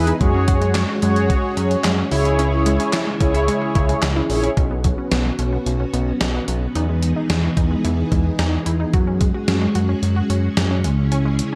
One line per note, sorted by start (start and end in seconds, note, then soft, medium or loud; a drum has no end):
0.00 0.13 E2 medium
0.00 0.19 E3 medium
0.00 0.19 B3 medium
0.00 0.14 E4 medium
0.00 0.14 G#4 medium
0.00 0.19 G#4 medium
0.00 0.14 B4 loud
0.00 0.19 D#5 medium
0.07 0.19 D#4 medium
0.07 closed hi-hat medium
0.21 0.86 F#2 loud
0.21 0.33 G#3 loud
0.21 2.10 G#3 medium
0.21 4.53 C#4 medium
0.21 2.10 F#4 loud
0.21 0.83 F#4 medium
0.21 0.83 G#4 medium
0.21 0.83 C#5 medium
0.21 kick loud
0.21 closed hi-hat medium
0.34 0.46 C#4 medium
0.48 0.60 F#4 medium
0.48 kick loud
0.48 closed hi-hat medium
0.62 0.74 G#3 medium
0.62 closed hi-hat medium
0.75 0.87 C#4 medium
0.75 snare loud
0.75 clap medium
0.75 closed hi-hat medium
0.89 1.01 F#4 medium
1.02 1.31 F#2 loud
1.02 1.15 G#3 medium
1.02 1.86 F#4 medium
1.02 1.86 G#4 medium
1.02 1.86 C#5 loud
1.02 closed hi-hat medium
1.16 closed hi-hat medium
1.30 1.42 F#4 loud
1.30 kick medium
1.30 closed hi-hat medium
1.57 1.76 F#2 loud
1.57 1.69 C#4 medium
1.57 closed hi-hat medium
1.71 closed hi-hat medium
1.84 2.03 F#2 loud
1.84 1.96 G#3 medium
1.84 snare loud
1.84 clap medium
1.84 closed hi-hat medium
1.98 2.10 C#4 medium
2.11 2.78 C#2 loud
2.11 4.55 C#3 medium
2.11 2.24 E4 medium
2.11 4.55 E4 medium
2.11 2.99 E4 loud
2.11 4.55 G#4 medium
2.11 2.99 G#4 medium
2.11 2.99 C#5 loud
2.11 open hi-hat medium
2.25 closed hi-hat medium
2.39 2.51 C#4 loud
2.39 closed hi-hat medium
2.66 2.78 G#3 medium
2.66 closed hi-hat medium
2.80 2.92 C#4 medium
2.80 closed hi-hat medium
2.93 3.06 E4 medium
2.93 snare loud
2.93 clap medium
2.93 closed hi-hat medium
3.07 3.19 G#3 medium
3.20 3.49 C#2 loud
3.20 3.33 C#4 medium
3.20 4.04 E4 medium
3.20 4.04 G#4 medium
3.20 4.04 C#5 loud
3.20 kick loud
3.20 closed hi-hat medium
3.34 3.46 E4 medium
3.34 closed hi-hat medium
3.48 3.60 G#3 medium
3.48 closed hi-hat medium
3.62 3.74 C#4 medium
3.75 3.95 C#2 loud
3.75 3.87 E4 medium
3.75 kick medium
3.75 closed hi-hat medium
3.89 4.01 G#3 medium
3.89 closed hi-hat medium
4.02 4.22 C#2 loud
4.02 4.15 C#4 medium
4.02 snare loud
4.02 clap medium
4.02 closed hi-hat medium
4.16 4.28 E4 medium
4.30 4.49 A#1 medium
4.30 4.51 E4 medium
4.30 4.51 G#4 medium
4.30 4.51 C#5 loud
4.30 open hi-hat medium
4.43 4.56 C#4 medium
4.43 closed hi-hat medium
4.57 4.95 B1 loud
4.57 8.90 B3 medium
4.57 4.69 C#4 loud
4.57 6.73 C#4 medium
4.57 6.73 F#4 medium
4.57 kick loud
4.57 closed hi-hat medium
4.71 4.83 B3 medium
4.84 4.96 F#3 medium
4.84 kick medium
4.84 closed hi-hat medium
4.98 5.10 C#4 medium
5.12 5.31 B1 loud
5.12 5.24 B3 medium
5.12 snare loud
5.12 closed hi-hat medium
5.25 5.37 F#3 medium
5.39 5.58 B1 loud
5.39 5.51 C#4 medium
5.39 closed hi-hat medium
5.53 5.65 B3 medium
5.66 5.85 B1 loud
5.66 closed hi-hat medium
5.80 5.92 C#4 medium
5.93 6.13 B1 loud
5.93 6.06 B3 medium
5.93 closed hi-hat medium
6.21 6.40 B1 loud
6.21 snare loud
6.21 closed hi-hat medium
6.34 6.46 B3 medium
6.48 6.67 B1 medium
6.48 6.60 F#3 medium
6.48 closed hi-hat medium
6.75 7.14 E2 loud
6.75 8.91 E3 medium
6.75 6.87 D#4 loud
6.75 8.91 D#4 medium
6.75 8.91 G#4 medium
6.75 closed hi-hat medium
6.89 7.01 G#3 medium
7.03 closed hi-hat medium
7.16 7.28 D#4 medium
7.30 7.49 E2 loud
7.30 7.42 G#3 medium
7.30 snare loud
7.30 closed hi-hat medium
7.44 7.56 E4 medium
7.57 7.76 E2 loud
7.57 7.69 D#4 medium
7.57 kick medium
7.57 closed hi-hat medium
7.71 7.83 G#3 medium
7.84 8.04 E2 loud
7.84 7.96 E4 medium
7.84 closed hi-hat medium
8.12 8.31 E2 loud
8.12 8.24 G#3 medium
8.12 kick medium
8.12 closed hi-hat medium
8.39 8.58 E2 loud
8.39 8.51 D#4 medium
8.39 snare loud
8.39 closed hi-hat medium
8.66 8.85 E2 medium
8.66 8.78 E4 medium
8.66 closed hi-hat medium
8.80 8.92 D#4 medium
8.94 9.32 F#2 loud
8.94 10.83 G#3 medium
8.94 11.55 C#4 medium
8.94 9.06 F#4 loud
8.94 10.83 F#4 medium
8.94 kick loud
8.94 closed hi-hat medium
9.07 9.19 C#4 medium
9.21 9.33 G#3 medium
9.21 kick medium
9.21 closed hi-hat medium
9.34 9.46 F#4 medium
9.48 9.67 F#2 loud
9.48 9.60 C#4 medium
9.48 snare loud
9.48 closed hi-hat medium
9.62 9.74 G#3 medium
9.75 9.94 F#2 medium
9.75 9.87 F#4 medium
9.75 closed hi-hat medium
9.89 10.01 C#4 medium
10.03 10.22 F#2 loud
10.03 closed hi-hat medium
10.16 10.28 F#4 medium
10.30 10.49 F#2 medium
10.30 10.42 C#4 medium
10.30 closed hi-hat medium
10.57 10.86 F#2 loud
10.57 snare loud
10.57 closed hi-hat medium
10.71 10.83 C#4 medium
10.84 11.42 C#2 medium
10.84 11.55 C#3 medium
10.84 10.96 G#3 medium
10.84 11.55 E4 medium
10.84 11.55 G#4 medium
10.84 closed hi-hat medium
11.12 11.24 C#4 loud
11.12 closed hi-hat medium
11.25 11.37 G#3 medium
11.39 closed hi-hat medium